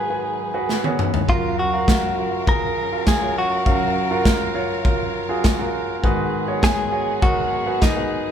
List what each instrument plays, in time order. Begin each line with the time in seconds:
Already playing: grand piano G#2 D#3 F#4 G#4 B4, string section F#3 D#4 G#4 B4, clean electric guitar G#4
0.10 grand piano F#4 G#4 B4
0.54 grand piano F#4 G#4 B4
0.69 snare
0.84 grand piano F#4 G#4 C#5, high tom
0.99 mid tom
1.14 floor tom
1.28 grand piano F#2 C#3 F4 F#4 A#4, string section C#4 A#4 F5, clean electric guitar F4, kick
1.59 clean electric guitar F#4
1.73 grand piano F#4 A#4 F5
1.88 kick, snare
2.18 grand piano F4 F#4 A#4
2.47 grand piano F4 F#4 G#4, clean electric guitar A#4, kick
2.92 grand piano F4 F#4 A#4
3.07 clean electric guitar G#4, kick, snare
3.21 grand piano F4 F#4 C#5
3.38 clean electric guitar F#4
3.66 grand piano F#2 C#3 F#4 A#4 F5, kick
4.11 grand piano F4 F#4 A#4
4.25 kick, snare
4.55 grand piano F4 F#4 C#5
4.85 grand piano F4 F#4 A#4, kick
5.29 grand piano F4 F#4 G#4
5.44 kick, snare
5.59 grand piano F4 F#4 A#4
6.03 grand piano G#2 D#3 F#4 G#4 B4, string section B3 D#4 G#4, kick
6.48 grand piano F#4 G#4 C#5
6.63 clean electric guitar G#4, kick, snare
6.92 grand piano F#4 G#4 C#5
7.22 grand piano F#4 G#4 A#4, clean electric guitar F#4, kick
7.66 grand piano F#4 G#4 B4
7.82 clean electric guitar D#4, kick, snare
7.96 grand piano F#4 G#4 B4